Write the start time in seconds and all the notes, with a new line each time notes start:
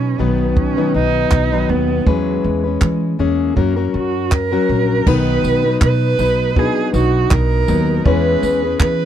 Already playing: B2 F#3 B3 C#4 D#4 B4
0.18 B1 B2 D#3 F#3 B3 D#4 B4
0.57 C#4, kick
0.77 B2 D#3 F#3 B3 D#4 B4
0.94 B1 D#4
1.31 B1, kick, clap
1.52 B2 D#3 F#3 B3 D#4 B4
1.69 D#2 B3
2.06 E2 E3 F#3 G#3 C#4 G#4 B4, kick
2.44 E2 G#3
2.64 C#4 G#4 B4
2.81 E3, kick, clap
3.19 E2 E3 G#3 A#3 C#4 G#4
3.56 F#2 F#3 C#4 F#4 A#4, kick
3.76 F#3 C#4 F#4 A#4
3.94 F#2 F#4
4.32 A#4, kick, clap
4.52 F#3 C#4 F#4 A#4
4.69 A#1
5.06 B1 B2 D#3 F#3 B3 D#4 F#4 A#4 B4, kick, crash
5.14 B4
5.44 B1, tambourine
5.64 F#3 B3 D#4 B4
5.81 B2 B4, kick, clap
6.18 B1 F#3 B3 D#4 B4, tambourine
6.55 F#3 B3 D4 D#4 F#4 G#4 B4, kick
6.62 D#4
6.93 B1 F#3 B3 D#4 F#4, tambourine
7.31 B1 A#4, kick, clap
7.68 D#2 F#3 B3 D#4, tambourine
8.05 E2 E3 G#3 B3 C#4 E4 G#4 B4 C#5, kick
8.43 E2, tambourine
8.63 C#4 G#4 B4
8.80 E3 B4, kick, clap